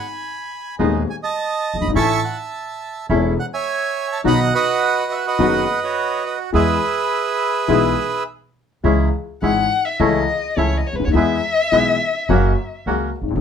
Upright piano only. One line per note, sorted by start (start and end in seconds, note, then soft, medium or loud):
0.79 1.03 D#1 medium
0.79 1.04 D#2 medium
0.79 1.03 D#3 medium
0.79 1.03 G#3 medium
0.79 1.04 B3 medium
0.79 1.03 G#4 medium
1.75 1.81 F#1 soft
1.81 1.88 G1 medium
1.89 1.95 G#1 medium
1.96 2.20 A1 medium
1.96 2.20 A2 medium
1.96 2.20 E3 medium
1.96 2.20 A3 medium
1.96 2.20 C#4 soft
1.96 2.20 A4 medium
3.10 3.34 E1 medium
3.10 3.34 E2 medium
3.10 3.34 E3 medium
3.10 3.34 A3 medium
3.10 3.34 C#4 medium
3.10 3.34 A4 medium
4.24 4.49 B1 medium
4.24 4.49 B2 medium
4.24 4.48 D#3 medium
4.24 4.49 F#3 soft
4.24 4.49 B3 medium
4.24 4.49 F#4 medium
5.39 5.63 F#1 medium
5.39 5.63 F#2 medium
5.39 5.63 D#3 medium
5.39 5.63 F#3 medium
5.39 5.63 B3 medium
5.39 5.63 F#4 medium
6.52 6.77 E2 medium
6.52 6.77 E3 medium
6.52 6.77 G#3 medium
6.52 6.78 B3 medium
6.52 6.78 G#4 medium
7.68 7.93 B1 medium
7.68 7.93 B2 medium
7.68 7.93 E3 medium
7.68 7.93 G#3 medium
7.68 7.93 B3 medium
7.68 7.93 G#4 medium
8.84 9.08 C#2 medium
8.84 9.09 C#3 medium
8.84 9.08 E3 medium
8.84 9.08 G#3 medium
8.84 9.09 C#4 medium
8.84 9.09 G#4 medium
9.42 9.66 G#1 soft
9.42 9.67 G#2 soft
9.42 9.66 E3 soft
9.42 9.66 G#3 soft
9.42 9.66 C#4 soft
9.42 9.67 G#4 soft
10.00 10.24 C#2 medium
10.00 10.24 C#3 medium
10.00 10.24 E3 medium
10.00 10.24 A3 medium
10.00 10.24 C#4 medium
10.00 10.24 A4 medium
10.56 10.81 C#2 soft
10.56 10.81 C#3 soft
10.56 10.81 E3 soft
10.56 10.81 A3 soft
10.56 10.81 C#4 soft
10.56 10.81 A4 soft
10.93 11.00 C#2 soft
10.99 11.07 D2 medium
11.06 11.14 D#2 medium
11.13 11.38 E2 medium
11.13 11.38 E3 medium
11.13 11.38 G#3 medium
11.13 11.38 B3 medium
11.13 11.38 G#4 medium
11.72 11.96 B1 soft
11.72 11.96 B2 soft
11.72 11.96 E3 soft
11.72 11.96 G#3 soft
11.72 11.96 B3 soft
11.72 11.96 G#4 soft
12.29 12.53 F#2 medium
12.29 12.53 C#3 medium
12.29 12.53 F#3 medium
12.29 12.53 A#3 medium
12.29 12.54 F#4 medium
12.87 13.11 C#2 soft
12.87 13.11 C#3 soft
12.87 13.11 F#3 soft
12.87 13.11 A#3 soft
12.87 13.11 F#4 medium
13.23 13.30 G#1 soft
13.31 13.37 A1 medium
13.37 13.41 A#1 medium